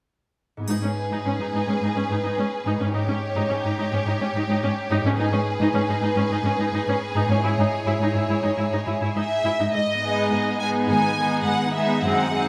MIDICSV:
0, 0, Header, 1, 7, 480
1, 0, Start_track
1, 0, Key_signature, 5, "minor"
1, 0, Tempo, 574713
1, 567, Time_signature, 4, 2, 24, 8
1, 1526, Tempo, 561798
1, 6806, Tempo, 574713
1, 10545, End_track
2, 0, Start_track
2, 0, Title_t, "Violin section"
2, 0, Program_c, 0, 48
2, 558, Note_on_c, 0, 71, 35
2, 2447, Note_off_c, 0, 71, 0
2, 2487, Note_on_c, 0, 73, 42
2, 4397, Note_off_c, 0, 73, 0
2, 4398, Note_on_c, 0, 71, 47
2, 6288, Note_off_c, 0, 71, 0
2, 6327, Note_on_c, 0, 73, 50
2, 7743, Note_off_c, 0, 73, 0
2, 7769, Note_on_c, 0, 76, 57
2, 8224, Note_off_c, 0, 76, 0
2, 8258, Note_on_c, 0, 75, 55
2, 8962, Note_off_c, 0, 75, 0
2, 8973, Note_on_c, 0, 80, 56
2, 9040, Note_off_c, 0, 80, 0
2, 9214, Note_on_c, 0, 80, 53
2, 9680, Note_on_c, 0, 78, 57
2, 9685, Note_off_c, 0, 80, 0
2, 9921, Note_off_c, 0, 78, 0
2, 9935, Note_on_c, 0, 76, 51
2, 10167, Note_off_c, 0, 76, 0
2, 10169, Note_on_c, 0, 78, 59
2, 10545, Note_off_c, 0, 78, 0
2, 10545, End_track
3, 0, Start_track
3, 0, Title_t, "Violin section"
3, 0, Program_c, 1, 48
3, 568, Note_on_c, 1, 68, 37
3, 2452, Note_off_c, 1, 68, 0
3, 2472, Note_on_c, 1, 67, 41
3, 4356, Note_off_c, 1, 67, 0
3, 4383, Note_on_c, 1, 68, 47
3, 8048, Note_off_c, 1, 68, 0
3, 8493, Note_on_c, 1, 63, 32
3, 8495, Note_on_c, 1, 68, 32
3, 8965, Note_off_c, 1, 63, 0
3, 8966, Note_off_c, 1, 68, 0
3, 8974, Note_on_c, 1, 63, 33
3, 8978, Note_on_c, 1, 68, 35
3, 9447, Note_off_c, 1, 63, 0
3, 9448, Note_off_c, 1, 68, 0
3, 9466, Note_on_c, 1, 63, 33
3, 9470, Note_on_c, 1, 68, 33
3, 9922, Note_off_c, 1, 63, 0
3, 9923, Note_off_c, 1, 68, 0
3, 9932, Note_on_c, 1, 63, 34
3, 9933, Note_on_c, 1, 68, 37
3, 10162, Note_off_c, 1, 68, 0
3, 10166, Note_off_c, 1, 63, 0
3, 10172, Note_on_c, 1, 68, 34
3, 10175, Note_on_c, 1, 63, 35
3, 10403, Note_off_c, 1, 68, 0
3, 10405, Note_off_c, 1, 63, 0
3, 10416, Note_on_c, 1, 63, 34
3, 10419, Note_on_c, 1, 68, 33
3, 10545, Note_off_c, 1, 63, 0
3, 10545, Note_off_c, 1, 68, 0
3, 10545, End_track
4, 0, Start_track
4, 0, Title_t, "Viola section"
4, 0, Program_c, 2, 48
4, 572, Note_on_c, 2, 63, 37
4, 619, Note_off_c, 2, 63, 0
4, 692, Note_on_c, 2, 61, 24
4, 739, Note_off_c, 2, 61, 0
4, 935, Note_on_c, 2, 63, 36
4, 982, Note_off_c, 2, 63, 0
4, 1055, Note_on_c, 2, 61, 27
4, 1102, Note_off_c, 2, 61, 0
4, 1176, Note_on_c, 2, 63, 32
4, 1222, Note_off_c, 2, 63, 0
4, 1293, Note_on_c, 2, 63, 39
4, 1340, Note_off_c, 2, 63, 0
4, 1407, Note_on_c, 2, 61, 29
4, 1454, Note_off_c, 2, 61, 0
4, 1531, Note_on_c, 2, 63, 35
4, 1578, Note_off_c, 2, 63, 0
4, 1642, Note_on_c, 2, 61, 31
4, 1690, Note_off_c, 2, 61, 0
4, 1765, Note_on_c, 2, 63, 30
4, 1813, Note_off_c, 2, 63, 0
4, 1875, Note_on_c, 2, 63, 47
4, 1926, Note_off_c, 2, 63, 0
4, 1998, Note_on_c, 2, 61, 33
4, 2048, Note_off_c, 2, 61, 0
4, 2241, Note_on_c, 2, 63, 41
4, 2290, Note_off_c, 2, 63, 0
4, 2360, Note_on_c, 2, 61, 33
4, 2409, Note_off_c, 2, 61, 0
4, 2478, Note_on_c, 2, 63, 41
4, 2527, Note_off_c, 2, 63, 0
4, 2602, Note_on_c, 2, 61, 26
4, 2650, Note_off_c, 2, 61, 0
4, 2837, Note_on_c, 2, 63, 47
4, 2886, Note_off_c, 2, 63, 0
4, 2950, Note_on_c, 2, 61, 31
4, 3000, Note_off_c, 2, 61, 0
4, 3080, Note_on_c, 2, 63, 38
4, 3128, Note_off_c, 2, 63, 0
4, 3196, Note_on_c, 2, 63, 42
4, 3245, Note_off_c, 2, 63, 0
4, 3316, Note_on_c, 2, 61, 34
4, 3365, Note_off_c, 2, 61, 0
4, 3442, Note_on_c, 2, 63, 41
4, 3490, Note_off_c, 2, 63, 0
4, 3558, Note_on_c, 2, 61, 35
4, 3607, Note_off_c, 2, 61, 0
4, 3686, Note_on_c, 2, 63, 39
4, 3733, Note_off_c, 2, 63, 0
4, 3805, Note_on_c, 2, 63, 55
4, 3852, Note_off_c, 2, 63, 0
4, 3920, Note_on_c, 2, 61, 39
4, 3968, Note_off_c, 2, 61, 0
4, 4154, Note_on_c, 2, 63, 58
4, 4203, Note_off_c, 2, 63, 0
4, 4285, Note_on_c, 2, 61, 47
4, 4331, Note_off_c, 2, 61, 0
4, 4398, Note_on_c, 2, 63, 50
4, 4445, Note_off_c, 2, 63, 0
4, 4507, Note_on_c, 2, 61, 36
4, 4556, Note_off_c, 2, 61, 0
4, 4761, Note_on_c, 2, 63, 55
4, 4808, Note_off_c, 2, 63, 0
4, 4868, Note_on_c, 2, 61, 38
4, 4917, Note_off_c, 2, 61, 0
4, 4996, Note_on_c, 2, 63, 37
4, 5044, Note_off_c, 2, 63, 0
4, 5112, Note_on_c, 2, 63, 52
4, 5160, Note_off_c, 2, 63, 0
4, 5236, Note_on_c, 2, 61, 37
4, 5284, Note_off_c, 2, 61, 0
4, 5360, Note_on_c, 2, 63, 48
4, 5407, Note_off_c, 2, 63, 0
4, 5480, Note_on_c, 2, 61, 37
4, 5527, Note_off_c, 2, 61, 0
4, 5600, Note_on_c, 2, 63, 39
4, 5648, Note_off_c, 2, 63, 0
4, 5727, Note_on_c, 2, 63, 56
4, 5773, Note_off_c, 2, 63, 0
4, 5846, Note_on_c, 2, 61, 41
4, 5893, Note_off_c, 2, 61, 0
4, 6083, Note_on_c, 2, 63, 53
4, 6131, Note_off_c, 2, 63, 0
4, 6204, Note_on_c, 2, 61, 47
4, 6252, Note_off_c, 2, 61, 0
4, 6319, Note_on_c, 2, 64, 50
4, 6368, Note_off_c, 2, 64, 0
4, 6454, Note_on_c, 2, 63, 33
4, 6500, Note_off_c, 2, 63, 0
4, 6686, Note_on_c, 2, 64, 53
4, 6734, Note_off_c, 2, 64, 0
4, 6821, Note_on_c, 2, 63, 35
4, 6865, Note_off_c, 2, 63, 0
4, 6935, Note_on_c, 2, 64, 39
4, 6981, Note_off_c, 2, 64, 0
4, 7044, Note_on_c, 2, 64, 43
4, 7092, Note_off_c, 2, 64, 0
4, 7156, Note_on_c, 2, 63, 38
4, 7206, Note_off_c, 2, 63, 0
4, 7280, Note_on_c, 2, 64, 47
4, 7329, Note_off_c, 2, 64, 0
4, 7407, Note_on_c, 2, 63, 37
4, 7455, Note_off_c, 2, 63, 0
4, 7525, Note_on_c, 2, 64, 34
4, 7574, Note_off_c, 2, 64, 0
4, 7644, Note_on_c, 2, 64, 42
4, 7694, Note_off_c, 2, 64, 0
4, 7771, Note_on_c, 2, 63, 39
4, 7820, Note_off_c, 2, 63, 0
4, 8011, Note_on_c, 2, 64, 43
4, 8060, Note_off_c, 2, 64, 0
4, 8131, Note_on_c, 2, 63, 33
4, 8181, Note_off_c, 2, 63, 0
4, 8489, Note_on_c, 2, 59, 34
4, 8490, Note_on_c, 2, 56, 33
4, 8963, Note_off_c, 2, 59, 0
4, 8964, Note_off_c, 2, 56, 0
4, 8976, Note_on_c, 2, 59, 33
4, 8977, Note_on_c, 2, 56, 34
4, 9447, Note_off_c, 2, 59, 0
4, 9448, Note_off_c, 2, 56, 0
4, 9460, Note_on_c, 2, 59, 33
4, 9464, Note_on_c, 2, 56, 32
4, 9925, Note_off_c, 2, 56, 0
4, 9926, Note_off_c, 2, 59, 0
4, 9935, Note_on_c, 2, 56, 34
4, 9939, Note_on_c, 2, 59, 33
4, 10157, Note_off_c, 2, 56, 0
4, 10167, Note_on_c, 2, 56, 37
4, 10170, Note_off_c, 2, 59, 0
4, 10170, Note_on_c, 2, 60, 36
4, 10389, Note_off_c, 2, 60, 0
4, 10390, Note_off_c, 2, 56, 0
4, 10399, Note_on_c, 2, 60, 35
4, 10400, Note_on_c, 2, 56, 36
4, 10545, Note_off_c, 2, 56, 0
4, 10545, Note_off_c, 2, 60, 0
4, 10545, End_track
5, 0, Start_track
5, 0, Title_t, "Harp"
5, 0, Program_c, 3, 46
5, 477, Note_on_c, 3, 44, 32
5, 492, Note_on_c, 3, 59, 26
5, 508, Note_on_c, 3, 63, 25
5, 531, Note_on_c, 3, 68, 25
5, 2323, Note_off_c, 3, 44, 0
5, 2333, Note_on_c, 3, 44, 35
5, 2369, Note_on_c, 3, 61, 28
5, 2399, Note_off_c, 3, 63, 0
5, 2410, Note_on_c, 3, 63, 29
5, 2449, Note_on_c, 3, 67, 29
5, 2485, Note_off_c, 3, 59, 0
5, 2486, Note_off_c, 3, 68, 0
5, 4231, Note_off_c, 3, 44, 0
5, 4242, Note_on_c, 3, 44, 40
5, 4282, Note_on_c, 3, 59, 34
5, 4309, Note_off_c, 3, 63, 0
5, 4320, Note_on_c, 3, 63, 34
5, 4358, Note_off_c, 3, 61, 0
5, 4358, Note_on_c, 3, 68, 34
5, 4397, Note_off_c, 3, 67, 0
5, 6154, Note_off_c, 3, 44, 0
5, 6165, Note_on_c, 3, 44, 41
5, 6203, Note_on_c, 3, 61, 33
5, 6243, Note_on_c, 3, 64, 32
5, 6270, Note_off_c, 3, 68, 0
5, 6280, Note_on_c, 3, 68, 33
5, 6283, Note_off_c, 3, 59, 0
5, 6302, Note_off_c, 3, 63, 0
5, 8200, Note_off_c, 3, 44, 0
5, 8218, Note_off_c, 3, 61, 0
5, 8238, Note_off_c, 3, 64, 0
5, 8255, Note_on_c, 3, 44, 39
5, 8420, Note_on_c, 3, 59, 30
5, 8583, Note_on_c, 3, 63, 29
5, 8735, Note_off_c, 3, 68, 0
5, 8745, Note_on_c, 3, 68, 35
5, 8892, Note_off_c, 3, 63, 0
5, 8902, Note_on_c, 3, 63, 32
5, 9052, Note_off_c, 3, 59, 0
5, 9062, Note_on_c, 3, 59, 31
5, 9223, Note_on_c, 3, 51, 30
5, 9371, Note_off_c, 3, 59, 0
5, 9381, Note_on_c, 3, 59, 26
5, 9527, Note_off_c, 3, 63, 0
5, 9537, Note_on_c, 3, 63, 32
5, 9685, Note_off_c, 3, 68, 0
5, 9695, Note_on_c, 3, 68, 32
5, 9843, Note_off_c, 3, 63, 0
5, 9853, Note_on_c, 3, 63, 31
5, 9999, Note_off_c, 3, 59, 0
5, 10009, Note_on_c, 3, 59, 33
5, 10171, Note_on_c, 3, 42, 39
5, 10189, Note_off_c, 3, 59, 0
5, 10190, Note_off_c, 3, 44, 0
5, 10194, Note_off_c, 3, 51, 0
5, 10329, Note_on_c, 3, 60, 30
5, 10477, Note_off_c, 3, 63, 0
5, 10487, Note_on_c, 3, 63, 35
5, 10545, Note_off_c, 3, 42, 0
5, 10545, Note_off_c, 3, 60, 0
5, 10545, Note_off_c, 3, 63, 0
5, 10545, Note_off_c, 3, 68, 0
5, 10545, End_track
6, 0, Start_track
6, 0, Title_t, "Cello section"
6, 0, Program_c, 4, 48
6, 567, Note_on_c, 4, 44, 40
6, 615, Note_off_c, 4, 44, 0
6, 685, Note_on_c, 4, 44, 30
6, 733, Note_off_c, 4, 44, 0
6, 925, Note_on_c, 4, 44, 37
6, 974, Note_off_c, 4, 44, 0
6, 1043, Note_on_c, 4, 44, 31
6, 1092, Note_off_c, 4, 44, 0
6, 1161, Note_on_c, 4, 44, 29
6, 1211, Note_off_c, 4, 44, 0
6, 1282, Note_on_c, 4, 44, 43
6, 1331, Note_off_c, 4, 44, 0
6, 1399, Note_on_c, 4, 44, 29
6, 1448, Note_off_c, 4, 44, 0
6, 1511, Note_on_c, 4, 44, 41
6, 1562, Note_off_c, 4, 44, 0
6, 1636, Note_on_c, 4, 44, 31
6, 1686, Note_off_c, 4, 44, 0
6, 1760, Note_on_c, 4, 44, 31
6, 1809, Note_off_c, 4, 44, 0
6, 1876, Note_on_c, 4, 44, 40
6, 1926, Note_off_c, 4, 44, 0
6, 1998, Note_on_c, 4, 44, 30
6, 2048, Note_off_c, 4, 44, 0
6, 2234, Note_on_c, 4, 44, 46
6, 2285, Note_off_c, 4, 44, 0
6, 2356, Note_on_c, 4, 44, 28
6, 2406, Note_off_c, 4, 44, 0
6, 2477, Note_on_c, 4, 44, 45
6, 2526, Note_off_c, 4, 44, 0
6, 2589, Note_on_c, 4, 44, 32
6, 2639, Note_off_c, 4, 44, 0
6, 2826, Note_on_c, 4, 44, 46
6, 2877, Note_off_c, 4, 44, 0
6, 2951, Note_on_c, 4, 44, 35
6, 3001, Note_off_c, 4, 44, 0
6, 3073, Note_on_c, 4, 44, 34
6, 3123, Note_off_c, 4, 44, 0
6, 3192, Note_on_c, 4, 44, 46
6, 3242, Note_off_c, 4, 44, 0
6, 3315, Note_on_c, 4, 44, 33
6, 3364, Note_off_c, 4, 44, 0
6, 3427, Note_on_c, 4, 44, 49
6, 3478, Note_off_c, 4, 44, 0
6, 3547, Note_on_c, 4, 44, 37
6, 3598, Note_off_c, 4, 44, 0
6, 3670, Note_on_c, 4, 44, 38
6, 3720, Note_off_c, 4, 44, 0
6, 3789, Note_on_c, 4, 44, 45
6, 3839, Note_off_c, 4, 44, 0
6, 3916, Note_on_c, 4, 44, 37
6, 3965, Note_off_c, 4, 44, 0
6, 4153, Note_on_c, 4, 44, 52
6, 4201, Note_off_c, 4, 44, 0
6, 4271, Note_on_c, 4, 44, 33
6, 4320, Note_off_c, 4, 44, 0
6, 4383, Note_on_c, 4, 44, 55
6, 4433, Note_off_c, 4, 44, 0
6, 4503, Note_on_c, 4, 44, 36
6, 4553, Note_off_c, 4, 44, 0
6, 4739, Note_on_c, 4, 44, 55
6, 4790, Note_off_c, 4, 44, 0
6, 4859, Note_on_c, 4, 44, 37
6, 4910, Note_off_c, 4, 44, 0
6, 4984, Note_on_c, 4, 44, 36
6, 5034, Note_off_c, 4, 44, 0
6, 5100, Note_on_c, 4, 44, 52
6, 5151, Note_off_c, 4, 44, 0
6, 5226, Note_on_c, 4, 44, 38
6, 5276, Note_off_c, 4, 44, 0
6, 5343, Note_on_c, 4, 44, 53
6, 5394, Note_off_c, 4, 44, 0
6, 5461, Note_on_c, 4, 44, 39
6, 5512, Note_off_c, 4, 44, 0
6, 5580, Note_on_c, 4, 44, 39
6, 5632, Note_off_c, 4, 44, 0
6, 5704, Note_on_c, 4, 44, 49
6, 5755, Note_off_c, 4, 44, 0
6, 5830, Note_on_c, 4, 44, 36
6, 5880, Note_off_c, 4, 44, 0
6, 6070, Note_on_c, 4, 44, 58
6, 6120, Note_off_c, 4, 44, 0
6, 6191, Note_on_c, 4, 44, 33
6, 6242, Note_off_c, 4, 44, 0
6, 6312, Note_on_c, 4, 44, 53
6, 6362, Note_off_c, 4, 44, 0
6, 6436, Note_on_c, 4, 44, 37
6, 6486, Note_off_c, 4, 44, 0
6, 6675, Note_on_c, 4, 44, 47
6, 6725, Note_off_c, 4, 44, 0
6, 6793, Note_on_c, 4, 44, 38
6, 6843, Note_off_c, 4, 44, 0
6, 6914, Note_on_c, 4, 44, 37
6, 6963, Note_off_c, 4, 44, 0
6, 7034, Note_on_c, 4, 44, 47
6, 7084, Note_off_c, 4, 44, 0
6, 7153, Note_on_c, 4, 44, 33
6, 7203, Note_off_c, 4, 44, 0
6, 7274, Note_on_c, 4, 44, 47
6, 7324, Note_off_c, 4, 44, 0
6, 7403, Note_on_c, 4, 44, 34
6, 7452, Note_off_c, 4, 44, 0
6, 7520, Note_on_c, 4, 44, 34
6, 7570, Note_off_c, 4, 44, 0
6, 7639, Note_on_c, 4, 44, 44
6, 7689, Note_off_c, 4, 44, 0
6, 7762, Note_on_c, 4, 44, 31
6, 7812, Note_off_c, 4, 44, 0
6, 8003, Note_on_c, 4, 44, 46
6, 8054, Note_off_c, 4, 44, 0
6, 8131, Note_on_c, 4, 44, 29
6, 8180, Note_off_c, 4, 44, 0
6, 8245, Note_on_c, 4, 44, 46
6, 8651, Note_off_c, 4, 44, 0
6, 8728, Note_on_c, 4, 44, 46
6, 9135, Note_off_c, 4, 44, 0
6, 9213, Note_on_c, 4, 44, 50
6, 9616, Note_off_c, 4, 44, 0
6, 9696, Note_on_c, 4, 44, 46
6, 10094, Note_off_c, 4, 44, 0
6, 10167, Note_on_c, 4, 42, 47
6, 10545, Note_off_c, 4, 42, 0
6, 10545, End_track
7, 0, Start_track
7, 0, Title_t, "Drums"
7, 565, Note_on_c, 9, 81, 25
7, 648, Note_off_c, 9, 81, 0
7, 10545, End_track
0, 0, End_of_file